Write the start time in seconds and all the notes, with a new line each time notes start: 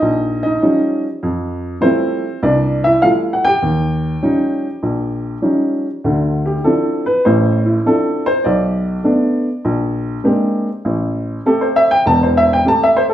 Already playing: D#4 D#5
0.02 A#1
0.43 D#4 D#5
0.62 F3 G3 C#4 D#4
1.23 F2
1.81 F3 G3 A3 C4 E4 C5
2.43 C2 D4 D5
2.84 E4 E5
3.02 F3 G3 A3 E4 F4 F5
3.33 F#5
3.45 G4 G5
3.62 D#2
4.22 F3 G3 C#4 D#4
4.83 A#1
5.42 F3 G3 C#4 D#4
6.04 D2 D3
6.46 G4
6.64 F3 C4 D4 E4 A4
7.06 B4
7.25 A1 A2 C5
7.66 E4
7.86 F3 C4 D4 E4 A4
8.26 C5
8.44 B1 D5
9.04 A3 B3 D4
9.65 A#1
10.24 G#3 A#3 C4 D4 G4
10.85 A1
11.46 A3 C4 G4 A4
11.61 C5
11.76 E5
11.91 G5
12.06 E1 E2 A5
12.23 C5
12.37 E5
12.53 G5
12.65 A3 C4 G4 A5
12.83 E5
12.97 C5
13.09 A4